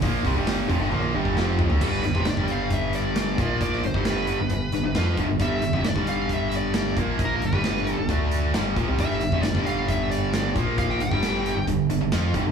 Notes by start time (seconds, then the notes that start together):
0.02 A#1 A#2 F3 A#3, kick, open hi-hat
0.25 C2 C3 G3, kick, open hi-hat
0.35 G1 G2 D3 G3
0.47 snare, open hi-hat
0.69 F1 F2 C3, kick, open hi-hat
0.81 G1 G2 D3
0.91 A#1 A#2 F3 A#3, high tom
1.02 high tom
1.15 G1 G2 D3 G3
1.25 kick
1.37 F1 F2 C3 F3, snare
1.59 floor tom
1.70 D2 D3 A3, floor tom
1.81 G1 G2 D3 G3 B4, kick, crash
2.03 G1 G2 D3, closed hi-hat
2.15 F1 F2 C3, kick
2.25 G1 G2 D3, snare, closed hi-hat
2.30 D5
2.37 G1 G2 D3 G3, kick
2.48 F5, closed hi-hat
2.70 E5, kick, closed hi-hat
2.93 D5, closed hi-hat
3.16 snare, closed hi-hat
3.38 A#1 A#2 F3 A#3, kick, closed hi-hat
3.61 D5, kick, closed hi-hat
3.73 snare
3.84 G1 G2 D3 C5, closed hi-hat
3.94 G1 G2 D3 G3, kick
4.05 B4, snare, closed hi-hat
4.17 snare
4.27 closed hi-hat
4.40 G1 G2 D3
4.50 G1 G2 D3, kick, closed hi-hat
4.72 G1 G2 D3, closed hi-hat
4.84 G1 G2 D3
4.95 F2 F3 C4 F4, snare, closed hi-hat
5.17 G1 G2 D3, kick, closed hi-hat
5.30 G1 G2 D3
5.39 G1 G2 D3 G3 E5, kick, closed hi-hat
5.62 G1 G2 D3, closed hi-hat
5.73 F1 F2 C3, kick
5.84 G1 G2 D3 D5, snare, closed hi-hat
5.95 G1 G2 D3 G3, kick
6.07 F5, closed hi-hat
6.29 kick, closed hi-hat
6.34 E5
6.52 closed hi-hat
6.57 D5
6.74 snare, closed hi-hat
6.97 A#1 A#2 F3 A#3, kick, closed hi-hat
7.19 kick, closed hi-hat
7.25 A#4
7.36 A#4
7.42 G1 G2 D3, closed hi-hat
7.46 B4
7.53 G1 G2 D3 G3, kick
7.64 snare, closed hi-hat
7.76 snare
7.87 closed hi-hat
7.92 A4
7.98 G1 G2 D3
8.09 D2 D3 A3 D4, kick, closed hi-hat
8.31 closed hi-hat
8.54 G1 G2 D3 G3, snare, closed hi-hat
8.76 A#1 A#2 F3, kick, closed hi-hat
8.89 C2 C3 G3
8.99 G1 G2 D3 G3 E5, kick, closed hi-hat
9.10 snare
9.21 G1 G2 D3, closed hi-hat
9.32 F1 F2 C3, kick
9.42 G1 G2 D3 D5, snare, closed hi-hat
9.55 G1 G2 D3 G3, kick, snare
9.66 F5, closed hi-hat
9.88 E5, kick, closed hi-hat
10.11 D5, closed hi-hat
10.33 snare, closed hi-hat
10.55 A#1 A#2 F3 A#3, kick, closed hi-hat
10.78 F5, kick, closed hi-hat
10.90 G5, snare
11.00 G1 G2 D3 G5, closed hi-hat
11.11 G1 G2 D3 G3, kick
11.23 snare, closed hi-hat
11.35 snare
11.46 closed hi-hat
11.57 G1 G2 D3
11.67 G1 G2 D3, kick, closed hi-hat
11.89 G1 G2 D3, closed hi-hat
12.01 G1 G2 D3
12.12 F2 F3 C4 F4, snare, closed hi-hat
12.34 G1 G2 D3, kick, closed hi-hat
12.47 G1 G2 D3